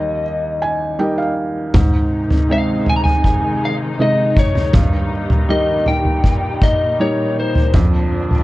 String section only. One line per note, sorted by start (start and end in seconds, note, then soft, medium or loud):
1.74 4.71 C3 soft
1.74 7.71 D#3 soft
1.74 4.72 G#3 soft
1.74 7.70 D#4 medium
4.75 8.43 A#2 soft
4.75 7.72 G3 soft
7.75 8.43 F2 medium
7.75 8.43 D3 medium
7.75 8.43 F3 medium
7.75 8.43 D4 medium